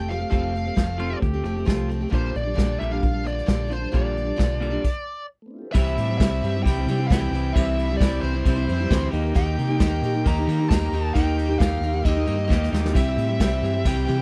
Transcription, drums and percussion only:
0.10 closed hi-hat medium
0.32 kick loud
0.32 closed hi-hat medium
0.55 closed hi-hat medium
0.77 kick loud
0.77 snare medium
0.77 closed hi-hat medium
0.99 closed hi-hat medium
1.22 kick loud
1.22 closed hi-hat soft
1.45 closed hi-hat medium
1.68 kick loud
1.68 snare loud
1.68 closed hi-hat medium
1.91 closed hi-hat medium
2.12 kick loud
2.12 closed hi-hat medium
2.35 closed hi-hat medium
2.58 kick loud
2.58 snare medium
2.58 closed hi-hat medium
2.81 closed hi-hat medium
3.02 kick medium
3.02 closed hi-hat medium
3.26 closed hi-hat medium
3.38 snare soft
3.47 kick loud
3.47 snare loud
3.47 closed hi-hat medium
3.71 closed hi-hat medium
3.94 kick loud
3.94 closed hi-hat medium
4.17 closed hi-hat medium
4.39 kick loud
4.39 snare medium
4.39 closed hi-hat medium
4.62 closed hi-hat medium
4.84 kick medium
4.84 crash medium
5.74 kick loud
5.74 crash loud
5.87 snare soft
5.97 ride medium
6.20 kick loud
6.20 snare loud
6.20 ride loud
6.44 ride medium
6.66 kick loud
6.66 ride loud
6.88 ride medium
7.10 kick loud
7.10 snare loud
7.10 ride loud
7.34 ride medium
7.56 kick loud
7.56 ride loud
7.79 ride medium
8.01 kick loud
8.01 snare loud
8.01 ride loud
8.24 ride medium
8.45 kick loud
8.45 ride medium
8.69 ride medium
8.91 kick loud
8.91 snare loud
8.91 ride loud
9.13 ride medium
9.35 kick loud
9.35 ride loud
9.58 ride medium
9.79 kick loud
9.79 snare loud
9.79 ride loud
10.03 ride medium
10.26 kick loud
10.26 ride loud
10.49 ride medium
10.71 kick loud
10.71 snare loud
10.71 ride loud
10.93 ride medium
11.15 kick loud
11.15 ride loud
11.39 ride medium
11.60 kick loud
11.60 snare loud
11.60 ride loud
11.83 ride medium
12.05 kick loud
12.05 ride loud
12.27 ride medium
12.50 kick loud
12.50 snare medium
12.64 snare medium
12.74 snare medium
12.86 snare medium
12.95 kick loud
12.95 crash loud
12.95 ride loud
13.17 ride medium
13.40 kick loud
13.40 snare loud
13.40 ride loud
13.64 ride medium
13.85 kick loud
13.85 ride loud
14.08 ride medium

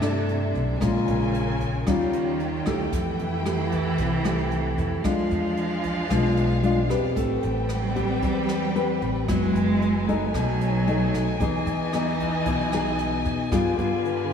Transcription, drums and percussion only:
0.02 cross-stick medium
0.02 closed hi-hat soft
0.29 closed hi-hat soft
0.55 kick soft
0.55 closed hi-hat soft
0.81 kick medium
0.81 cross-stick medium
0.81 closed hi-hat medium
1.08 closed hi-hat soft
1.34 closed hi-hat soft
1.60 kick soft
1.60 closed hi-hat soft
1.87 kick medium
1.87 cross-stick medium
1.87 closed hi-hat medium
2.13 closed hi-hat soft
2.40 closed hi-hat soft
2.66 kick soft
2.66 cross-stick medium
2.66 closed hi-hat soft
2.93 kick medium
2.93 closed hi-hat medium
3.19 closed hi-hat soft
3.46 cross-stick medium
3.46 closed hi-hat soft
3.72 kick soft
3.72 closed hi-hat soft
3.98 kick medium
3.98 closed hi-hat medium
4.25 cross-stick medium
4.25 closed hi-hat soft
4.51 closed hi-hat soft
4.78 kick soft
4.78 closed hi-hat soft
5.04 kick medium
5.04 cross-stick medium
5.04 closed hi-hat medium
5.31 closed hi-hat soft
5.57 closed hi-hat soft
5.83 kick soft
5.83 closed hi-hat soft
6.10 kick medium
6.10 cross-stick medium
6.10 closed hi-hat medium
6.37 closed hi-hat soft
6.63 closed hi-hat soft
6.90 kick soft
6.90 cross-stick medium
6.90 closed hi-hat soft
7.16 kick medium
7.16 closed hi-hat medium
7.43 closed hi-hat soft
7.69 cross-stick medium
7.69 closed hi-hat soft
7.96 kick soft
7.96 closed hi-hat soft
8.22 kick medium
8.22 closed hi-hat medium
8.49 cross-stick medium
8.49 closed hi-hat soft
8.75 closed hi-hat soft
9.02 kick soft
9.02 closed hi-hat soft
9.28 kick medium
9.28 cross-stick medium
9.28 closed hi-hat medium
9.55 closed hi-hat soft
9.82 closed hi-hat soft
10.08 kick soft
10.08 closed hi-hat soft
10.34 kick medium
10.34 cross-stick medium
10.34 closed hi-hat medium
10.61 closed hi-hat soft
10.87 closed hi-hat soft
11.14 kick soft
11.14 cross-stick medium
11.14 closed hi-hat soft
11.40 kick medium
11.40 closed hi-hat medium
11.67 closed hi-hat soft
11.93 cross-stick medium
11.93 closed hi-hat soft
12.19 kick soft
12.19 closed hi-hat soft
12.46 kick medium
12.46 closed hi-hat medium
12.72 cross-stick medium
12.72 closed hi-hat soft
12.99 closed hi-hat soft
13.25 kick soft
13.25 closed hi-hat soft
13.52 kick medium
13.52 cross-stick medium
13.52 closed hi-hat medium
13.79 closed hi-hat soft
14.05 closed hi-hat soft

